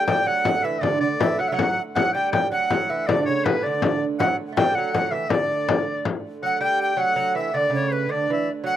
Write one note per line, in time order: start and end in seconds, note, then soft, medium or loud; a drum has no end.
0.00 1.93 D3 medium
0.00 1.94 A3 medium
0.00 0.29 G5 medium
0.07 0.26 G3 medium
0.07 0.28 G5 medium
0.07 frame drum medium
0.26 0.65 F#3 medium
0.26 0.66 F#5 loud
0.26 0.64 F#5 medium
0.26 frame drum soft
0.45 frame drum medium
0.63 0.81 E3 medium
0.63 0.83 E5 medium
0.63 0.85 E5 medium
0.63 frame drum soft
0.81 1.00 D3 medium
0.81 1.00 D5 medium
0.81 1.02 D5 medium
0.81 frame drum medium
1.00 1.19 D3 medium
1.00 1.36 D5 medium
1.00 1.08 D5 medium
1.19 1.39 E3 medium
1.19 1.42 E5 medium
1.19 frame drum medium
1.38 1.51 F#3 medium
1.38 1.51 F#5 medium
1.38 1.50 F#5 medium
1.48 1.79 F#3 medium
1.48 1.56 E5 medium
1.53 1.79 F#5 medium
1.53 1.82 F#5 loud
1.59 frame drum medium
1.77 frame drum soft
1.93 6.41 D3 medium
1.93 2.14 F#3 medium
1.93 6.41 A3 medium
1.93 2.14 F#5 medium
1.93 2.13 F#5 medium
1.93 frame drum medium
2.13 2.51 G3 medium
2.13 2.31 G5 medium
2.13 frame drum soft
2.32 2.40 G5 medium
2.32 2.50 G5 medium
2.32 frame drum medium
2.52 2.69 F#3 medium
2.52 2.69 F#5 medium
2.52 2.91 F#5 medium
2.52 frame drum soft
2.69 2.88 F#3 medium
2.69 3.08 F#5 medium
2.69 frame drum medium
2.90 3.08 E3 medium
2.90 3.09 E5 medium
2.90 frame drum soft
3.06 3.27 D3 medium
3.06 3.21 D5 medium
3.06 3.26 D5 medium
3.06 frame drum medium
3.22 3.46 C#5 medium
3.22 3.27 D5 soft
3.27 3.46 C#3 medium
3.27 3.46 C#5 medium
3.27 frame drum soft
3.45 3.64 B2 medium
3.45 3.64 B4 medium
3.45 3.65 B4 medium
3.45 frame drum medium
3.63 4.04 D3 medium
3.63 4.05 D5 medium
3.63 frame drum soft
3.82 frame drum medium
4.02 frame drum soft
4.19 4.37 F#3 medium
4.19 4.36 F#5 medium
4.19 4.27 F#5 medium
4.19 frame drum medium
4.52 4.57 A3 medium
4.57 4.76 G3 medium
4.57 4.76 G5 medium
4.57 frame drum medium
4.68 4.76 G5 medium
4.75 4.95 F#3 medium
4.75 5.15 F#5 medium
4.75 4.92 F#5 medium
4.75 frame drum soft
4.93 5.14 F#3 medium
4.93 5.12 F#5 medium
4.93 frame drum medium
5.11 5.29 E3 medium
5.11 5.32 E5 medium
5.11 5.34 E5 medium
5.11 frame drum soft
5.29 6.00 D3 medium
5.29 6.05 D5 medium
5.29 6.06 D5 medium
5.29 frame drum medium
5.69 frame drum medium
6.05 frame drum medium
6.41 8.77 D3 medium
6.41 6.60 F#3 medium
6.41 8.77 A3 medium
6.41 6.60 F#5 medium
6.46 6.61 F#5 medium
6.60 6.96 G3 medium
6.60 6.99 G5 medium
6.60 6.79 G5 loud
6.82 7.02 G5 medium
6.97 7.15 F#3 medium
6.97 7.16 F#5 medium
6.97 7.36 F#5 loud
7.16 7.35 F#3 medium
7.16 7.34 F#5 medium
7.35 7.54 E3 medium
7.35 7.52 E5 medium
7.35 7.59 E5 medium
7.54 7.69 D3 medium
7.54 7.92 D5 medium
7.54 7.74 D5 loud
7.70 8.09 C#3 medium
7.75 7.94 C#5 medium
7.91 8.12 B4 medium
7.91 8.13 B4 medium
8.09 8.30 D3 medium
8.09 8.32 D5 medium
8.09 8.52 D5 medium
8.30 8.48 E3 medium
8.30 8.50 E5 medium
8.64 8.77 F#3 medium
8.64 8.77 F#5 loud